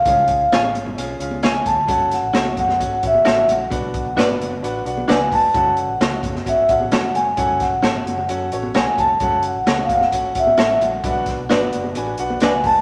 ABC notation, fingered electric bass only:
X:1
M:4/4
L:1/16
Q:1/4=131
K:F#m
V:1 name="Fingered electric bass" clef=bass
C,,3 C,, A,,,2 G,,,2 B,,,2 C,,4 D,,2 | F,,,3 A,,, C,,2 F,,2 G,,,2 A,,,2 A,,,2 ^A,,,2 | B,,,3 B,,, G,,,2 F,,,2 A,,,2 B,,,2 C,,2 ^E,,,2 | F,,,3 A,,, C,,2 F,,,2 G,,,2 A,,,2 E,,,2 ^E,,,2 |
F,,,3 A,,, G,,,2 F,,,2 F,,2 A,,,2 B,,, z ^E,,,2 | F,,,3 A,,, C,,2 F,,,2 G,,,2 A,,,2 A,,,2 ^A,,,2 | B,,,3 B,,, G,,,2 F,,,2 A,,,2 B,,,2 C,,2 ^E,,,2 |]